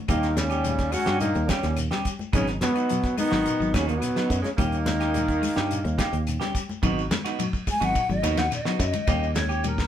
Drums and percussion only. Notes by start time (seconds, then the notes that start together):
0.08 kick, closed hi-hat, low conga, claves, shekere
0.23 snare, closed hi-hat, shekere
0.37 snare, closed hi-hat, high conga, low conga, shekere
0.50 closed hi-hat, claves, shekere
0.64 closed hi-hat, high conga, shekere
0.78 kick, snare, closed hi-hat, shekere
0.92 open hi-hat, high conga, claves, shekere
1.06 snare, closed hi-hat, shekere
1.20 closed hi-hat, high conga, shekere
1.35 closed hi-hat, shekere
1.49 kick, snare, closed hi-hat, high conga, claves, shekere
1.63 snare, closed hi-hat, shekere
1.76 closed hi-hat, claves, shekere
1.91 snare, closed hi-hat, shekere
2.05 kick, closed hi-hat, shekere
2.19 high conga, shekere
2.33 kick, closed hi-hat, low conga, claves, shekere
2.47 snare, closed hi-hat, shekere
2.61 snare, closed hi-hat, high conga, low conga, shekere
2.76 closed hi-hat, claves, shekere
2.89 closed hi-hat, shekere
3.03 kick, snare, closed hi-hat, shekere
3.17 open hi-hat, high conga, claves, shekere
3.32 snare, shekere
3.46 closed hi-hat, shekere
3.61 shekere
3.74 kick, snare, closed hi-hat, high conga, claves, shekere
3.89 closed hi-hat, shekere
4.02 closed hi-hat, claves, shekere
4.16 snare, closed hi-hat, shekere
4.30 kick, closed hi-hat, shekere
4.44 snare, closed hi-hat, high conga, shekere
4.58 kick, closed hi-hat, low conga, claves, shekere
4.72 closed hi-hat, shekere
4.86 snare, closed hi-hat, high conga, low conga, shekere
5.00 snare, closed hi-hat, claves, shekere
5.14 closed hi-hat, high conga, shekere
5.28 kick, closed hi-hat, shekere
5.43 open hi-hat, high conga, claves, shekere
5.56 snare, closed hi-hat, shekere
5.71 closed hi-hat, shekere
5.85 closed hi-hat, shekere
5.99 kick, snare, closed hi-hat, high conga, claves, shekere
6.13 closed hi-hat, shekere
6.27 closed hi-hat, claves, shekere
6.41 snare, closed hi-hat, shekere
6.55 kick, closed hi-hat, shekere
6.69 high conga, shekere
6.83 kick, ride bell, low conga, claves, shekere
6.98 shekere
7.11 snare, ride bell, high conga, low conga, shekere
7.25 snare, ride bell, claves, shekere
7.39 ride bell, high conga, shekere
7.53 kick, shekere
7.67 kick, open hi-hat, high conga, claves, shekere
7.82 ride bell, shekere
7.95 kick, ride bell, shekere
8.10 high conga, shekere
8.23 snare, ride bell, high conga, claves, shekere
8.37 snare, ride bell, shekere
8.51 snare, ride bell, claves, shekere
8.65 snare, shekere
8.80 kick, snare, ride bell, shekere
8.93 ride bell, high conga, shekere
9.07 kick, snare, ride bell, low conga, claves, shekere
9.23 shekere
9.35 snare, ride bell, high conga, low conga, shekere
9.49 claves, shekere
9.64 ride bell, high conga, shekere
9.78 kick, snare, shekere